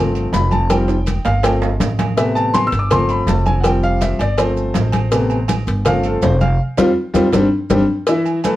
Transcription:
Already playing: G1 F3 A3 C4
0.15 high conga, low agogo, maracas
0.33 F1 B5, cowbell, high conga, low timbale, maracas
0.52 A5, high conga, low agogo, maracas
0.70 F3 G3 C4 G5, cowbell, high conga, high timbale, low agogo, maracas
0.88 high conga, high timbale, maracas
1.06 cowbell, high conga, low agogo, maracas
1.25 G1 F5, cowbell, high conga, low timbale, low agogo, maracas
1.43 F3 A3 C4 G5, cowbell, high conga, low timbale, low agogo, maracas
1.62 high conga, low timbale, maracas
1.80 A1, cowbell, high conga, low timbale, low agogo, maracas
1.99 cowbell, high conga, low timbale, low agogo, maracas
2.17 C3 A3 B3 E5, cowbell, high conga, low agogo, maracas
2.35 A5, high conga, low agogo, maracas
2.54 C6, cowbell, high conga, low timbale, low agogo, maracas
2.67 E6
2.72 G1, cowbell, high conga, maracas
2.79 D6
2.90 F3 A3 C4 C6, cowbell, high conga, low conga, low agogo, maracas
3.09 B5, high conga, low agogo, maracas
3.27 F1 A5, cowbell, high conga, low timbale, maracas
3.46 G#5, high conga, low agogo, maracas
3.61 F3 F#5, cowbell, low agogo
3.65 G3 C4 G5, maracas
3.83 F5, high conga, maracas
4.01 E5, cowbell, high conga, low timbale, low agogo, maracas
4.19 G1 D5, cowbell, high conga, low agogo, maracas
4.37 F3 A3 C4 C5, cowbell, high conga, low agogo, maracas
4.57 high conga, maracas
4.74 A1, cowbell, high conga, low timbale, low agogo, maracas
4.92 cowbell, high conga, low agogo, maracas
5.12 C3 A3 B3, cowbell, high conga, low agogo, maracas
5.30 high conga, low agogo, maracas
5.48 cowbell, high conga, low timbale, low agogo, maracas
5.67 G1, cowbell, high conga, maracas
5.85 F3 A3 C4 F5, cowbell, high conga, low conga, low agogo, maracas
6.04 A4, high conga, low agogo, maracas
6.22 F1 C5, cowbell, high conga, low timbale, maracas
6.41 F5, high conga, low agogo, maracas
6.77 F2 G3 C4 F4, cowbell, high conga, high timbale, maracas
7.14 F2 G3 C4 F4, cowbell, high conga, high timbale, maracas
7.32 G1 G3 C4 D4, cowbell, high conga, high timbale, maracas
7.70 G1 G3 C4 D4, cowbell, high conga, high timbale, maracas
8.07 E3 E4 E5, cowbell, high conga, low agogo, maracas
8.25 high conga, low agogo, maracas
8.44 A3 A4 B4, cowbell, high conga, low timbale, low agogo, maracas

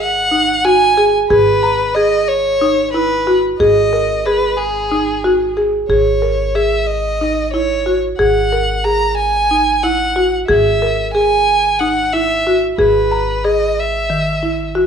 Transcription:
Already playing: G#1 G#4
0.00 F#5
0.31 D#4
0.64 F#4 G#5
0.97 G#4
1.29 G#1 G#4 B4
1.63 A#5
1.95 G#4 D#5
2.28 C#5
2.61 D#4
2.93 E4 B4
3.27 F#4
3.60 G#1 G#4 D#5
3.93 A#4
4.26 G#4 B4
4.57 G#4
4.92 D#4
5.24 F#4
5.57 G#4
5.89 G#1 G#4 C#5
6.22 A#4
6.55 G#4 E5
6.87 D#5
7.21 D#4
7.53 E4 C#5
7.86 F#4
8.19 G#1 G#4 F#5
8.52 A#4
8.84 G#4 A#5
9.17 G#5
9.51 D#4
9.83 E4 F#5
10.16 F#4
10.48 G#1 G#4 E5
10.82 A#4
11.13 G#4 G#5
11.79 D#4 F#5
12.13 E4 E5
12.47 F#4
12.78 G#1 G#4 B4
13.12 A#5
13.44 G#4 D#5
13.79 E5
14.10 D#3
14.43 E4
14.75 F#4

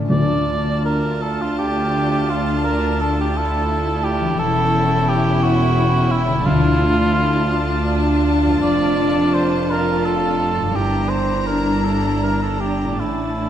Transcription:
Already playing: A2 D3 E3 A3 C#4 D4 E4 A4 C#5 E5
0.02 D4
0.06 D3 F4
0.10 D2 D4 F4 D5 A5
0.85 A#4
1.22 A4
1.41 F4
1.59 G4
2.29 D4 F4
2.64 A#4
3.01 A4
3.21 G4
3.36 E4 A4
4.04 G4
4.21 E3
4.25 G3
4.29 C#4
4.35 E4
4.39 E1 E2 C#4 E4 A4 G5
5.09 G4
5.43 F#4
6.11 E4
6.28 D3
6.32 A3
6.36 D4
6.41 A4
6.45 D2 D3 D4 F4 A5
7.49 D4
8.45 F2
8.49 A3
8.54 D4
8.58 A4
8.63 F1 F2 D4 D5
9.34 C5
9.71 F4 A#4
10.06 A4
10.56 G2
10.62 D4
10.66 E4
10.71 G2 E4 A#4 A#5
10.75 G1 D4 G4
11.10 C5
11.47 A#4
11.84 A4
12.23 A#4
12.43 A4
12.60 G4
12.84 A2
12.88 C#4
12.93 E4
12.97 A1 A2 E4 A4 A5
13.02 C#4 E4

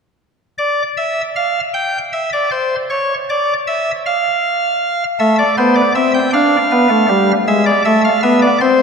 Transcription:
0.58 D5
0.97 E5
1.36 F5
1.74 G5
2.13 E5
2.33 D5
2.51 C5
2.90 C#5
3.30 D5
3.67 E5
4.06 F5
5.20 A3 E5
5.39 D5
5.58 B3 C5
5.75 D5
5.95 C4 E5
6.14 G5
6.33 D4 F5
6.72 B3
6.89 A3
7.09 G3
7.48 G#3 E5
7.66 D5
7.85 A3 E5
8.05 F5
8.23 B3 E5
8.42 D5
8.61 C4 C5

